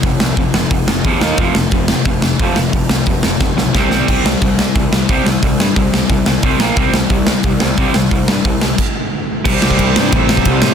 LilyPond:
<<
  \new Staff \with { instrumentName = "Distorted electric guitar" } { \clef bass \time 4/4 \key f \lydian \tempo 4 = 178 <f, c>8 <f, c>8 <f, c>8 <f, c>8 <f, c>8 <f, c>8 <f, c f>8 <ees bes ees'>8 | <f, c f>8 <f, c>8 <f, c>8 <f, c>8 <f, c>8 <f, c>8 <f, c f>8 <f, c>8 | <f, c>8 <f, c>8 <f, c>8 <f, c>8 <f, c>8 <f, c>8 <c g c'>8 <c g c'>8 | <c g c'>8 <c g>8 <c g>8 <c g>8 <c g>8 <c g>8 <c g c'>8 <c g>8 |
<c g>8 <c g>8 <c g>8 <c g>8 <c g>8 <c g>8 <c g c'>8 <bes, f bes>8 | <c g c'>8 <c g>8 <c g>8 <c g>8 <c g>8 <c g>8 <c g c'>8 <c g>8 | <c g>8 <c g>8 <c g>8 <c g>8 r2 | <c g c'>1 | }
  \new Staff \with { instrumentName = "Overdriven electric guitar" } { \clef bass \time 4/4 \key f \lydian <f, c>8 <f, c>8 <f, c>8 <f, c>8 <f, c>8 <f, c>8 <f, c f>8 <ees bes ees'>8 | <f, c f>8 <f, c>8 <f, c>8 <f, c>8 <f, c>8 <f, c>8 <f, c f>8 <f, c>8 | <f, c>8 <f, c>8 <f, c>8 <f, c>8 <f, c>8 <f, c>8 <c g c'>8 <c g c'>8 | <c g c'>8 <c g>8 <c g>8 <c g>8 <c g>8 <c g>8 <c g c'>8 <c g>8 |
<c g>8 <c g>8 <c g>8 <c g>8 <c g>8 <c g>8 <c g c'>8 <bes, f bes>8 | <c g c'>8 <c g>8 <c g>8 <c g>8 <c g>8 <c g>8 <c g c'>8 <c g>8 | <c g>8 <c g>8 <c g>8 <c g>8 r2 | <c g c'>1 | }
  \new Staff \with { instrumentName = "Picked electric bass" } { \clef bass \time 4/4 \key f \lydian f,,8 c,8 f,,8 f,,8 f,,8 f,,8 e,8 ees,8 | f,,8 f,,8 f,,4 f,,8 f,,8 f,,8 f,,8 | f,,8 c,8 f,,8 f,,8 f,,8 b,,8 c,8 c,8 | c,8 c,8 c,4 c,8 c,8 c,8 c,8 |
c,8 g,8 c,8 c,8 c,8 c,8 c,8 bes,,8 | c,8 c,8 c,4 c,8 c,8 c,8 c,8 | c,8 g,8 c,8 c,8 r2 | c,8 c,8 c,8 g,8 a,,4 c,8 a,8 | }
  \new DrumStaff \with { instrumentName = "Drums" } \drummode { \time 4/4 <hho bd>8 sn8 <hho bd>8 sn8 <hho bd>8 sn8 <hho bd>8 sn8 | <hho bd>8 sn8 <hho bd>8 sn8 <hho bd>8 sn8 <hho bd>8 sn8 | <hho bd>8 sn8 <hho bd>8 sn8 <bd sn>8 sn8 <bd sn>8 sn8 | <cymc hho bd>8 sn8 <hho bd>8 sn8 <hho bd>8 sn8 <hho bd>8 sn8 |
<hho bd>8 sn8 <hho bd>8 sn8 <hho bd>8 sn8 <hho bd>8 sn8 | <hho bd>8 sn8 <hho bd>8 sn8 <hho bd>8 sn8 <hho bd>8 sn8 | <hho bd>8 sn8 <hho bd>8 sn8 <cymc bd>4 r4 | <cymc bd>8 sn16 bd16 <bd cymr>8 sn8 <bd cymr>8 sn16 bd16 <bd cymr>8 sn8 | }
>>